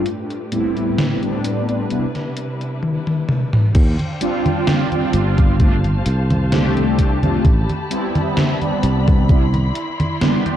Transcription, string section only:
Already playing: A3
0.06 A2 G4 B4
1.90 C3 G3 D4 E4
3.75 D4 C5 F5 G5
5.60 G4 C5 A5
7.44 B5
9.29 E4 D5 C6

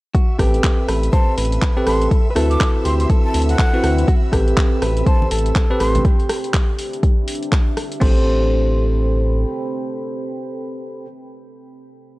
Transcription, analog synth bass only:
0.39 A1
0.88 A1
1.38 A1
1.87 A1
2.36 D2
2.85 D2
3.34 D2
3.84 D2
4.33 A1
4.82 A1
5.31 A1
5.80 A1
8.01 A1

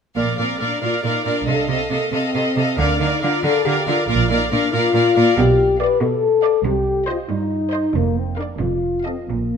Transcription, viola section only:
0.16 A#4
0.38 A#4
0.61 A#4
0.83 A#4
1.05 A#4
1.26 A#4
1.48 A4
1.69 A4
1.91 A4
2.12 A4
2.34 A4
2.56 A4
2.78 A#4
3.00 A#4
3.22 A#4
3.44 A#4
3.66 A#4
3.87 A#4
4.09 A#4
4.30 A#4
4.51 A#4
4.72 A#4
4.94 A#4
5.16 A#4
5.80 D5
6.43 D5
7.07 C5
7.72 C5
8.37 A#4
9.04 A4

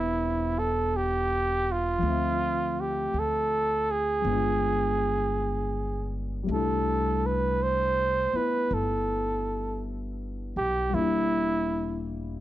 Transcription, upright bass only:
Already playing: E1
2.02 D2
3.14 D2
4.24 G1
6.49 C2
8.33 muted upright bass stroke
8.71 G1
10.56 B1
10.94 E1

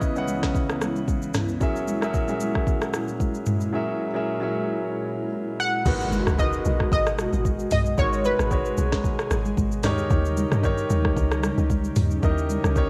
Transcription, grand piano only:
Already playing: C#3 C#4 E4 B4 C#5 D#5
0.16 C#3 C#4 E4 B4 F#5
1.60 F#3 C#4 G#4 A#4 E5
2.01 F#3 C#4 G#4 A#4 E5
2.28 F#3 C#4 G#4 A#4 E5
3.73 F#3 C#4 G#4 A#4 E5
4.14 F#3 C#4 G#4 A#4 E5
4.40 F#3 C#4 G#4 A#4 E5
5.85 G#3 D#4 F#4 A#4 B4
6.38 G#3 D#4 F#4 A#4 B4
7.98 G#3 D#4 F#4 A#4 C#5
8.50 G#3 D#4 F#4 B4 C#5
9.83 D#3 D#4 G4 A#4 C#5
10.63 D#3 D#4 G4 A#4 C#5
12.22 D#3 D#4 E4 A#4 D#5
12.30 G4
12.75 D#3 D#4 G4 A#4 C#5

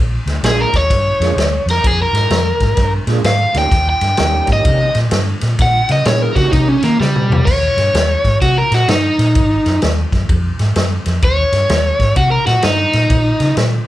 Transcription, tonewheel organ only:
0.44 G#3 A#3 D4 F4 G#4
1.21 G#3 A#3 D4 F4 G#4
3.07 G#3 A#3 D4 F4 G#4
3.54 G3 A#3 C#4 D#4 G4
4.19 G3 A#3 C#4 D#4 G4
6.06 G#3 B3 D4 E4 G#4
6.35 G3 A#3 C#4 D#4 G4

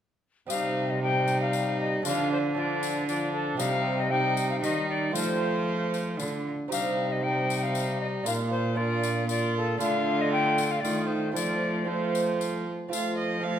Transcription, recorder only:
0.50 F5
0.90 D#5
1.03 G5
1.41 F5
1.81 D#5
2.06 F5
2.32 C5
2.58 D5
3.08 D5
3.32 A4
3.59 F5
4.00 D#5
4.11 G5
4.50 F5
4.62 D#5
4.90 D5
5.16 C5
6.72 F5
7.12 D#5
7.23 G5
7.63 F5
8.01 D#5
8.27 F5
8.51 C5
8.77 D5
9.30 D5
9.57 A4
9.81 F5
10.21 D#5
10.32 G5
10.71 F5
10.81 D5
11.07 C5
11.34 D5
11.88 C5
12.94 F4
13.46 F4

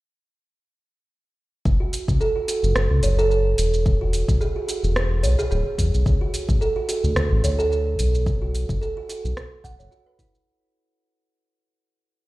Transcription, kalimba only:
1.80 F#4
2.21 A4
2.36 F#4
2.48 F#4
3.03 C#5
3.19 A4
3.31 A4
4.01 F#4
4.41 G#4
4.56 F#4
4.68 F#4
5.23 C#5
5.39 G#4
5.51 G#4
6.21 F#4
6.61 A4
6.76 F#4
6.89 F#4
7.44 C#5
7.59 A4
7.71 A4
8.42 F#4
8.81 A4
8.97 F#4
9.09 F#4
9.64 F#5
9.79 C#5
9.91 F#4
10.06 B4
10.19 E4

